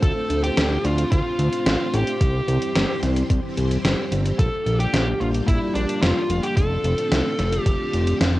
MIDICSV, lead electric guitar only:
0, 0, Header, 1, 2, 480
1, 0, Start_track
1, 0, Key_signature, -1, "minor"
1, 0, Tempo, 545455
1, 24, Time_signature, 4, 2, 24, 8
1, 7388, End_track
2, 0, Start_track
2, 0, Title_t, "Lead electric guitar"
2, 0, Program_c, 0, 29
2, 25, Note_on_c, 0, 69, 111
2, 359, Note_off_c, 0, 69, 0
2, 384, Note_on_c, 0, 67, 103
2, 746, Note_on_c, 0, 65, 92
2, 755, Note_off_c, 0, 67, 0
2, 973, Note_off_c, 0, 65, 0
2, 983, Note_on_c, 0, 65, 97
2, 1704, Note_on_c, 0, 67, 86
2, 1725, Note_off_c, 0, 65, 0
2, 2629, Note_off_c, 0, 67, 0
2, 3862, Note_on_c, 0, 69, 106
2, 4218, Note_off_c, 0, 69, 0
2, 4222, Note_on_c, 0, 67, 106
2, 4578, Note_on_c, 0, 65, 93
2, 4594, Note_off_c, 0, 67, 0
2, 4644, Note_off_c, 0, 65, 0
2, 4818, Note_on_c, 0, 64, 103
2, 5055, Note_off_c, 0, 64, 0
2, 5058, Note_on_c, 0, 62, 86
2, 5295, Note_off_c, 0, 62, 0
2, 5298, Note_on_c, 0, 65, 91
2, 5657, Note_on_c, 0, 67, 93
2, 5672, Note_off_c, 0, 65, 0
2, 5775, Note_off_c, 0, 67, 0
2, 5779, Note_on_c, 0, 69, 90
2, 6712, Note_off_c, 0, 69, 0
2, 6712, Note_on_c, 0, 67, 90
2, 7186, Note_off_c, 0, 67, 0
2, 7388, End_track
0, 0, End_of_file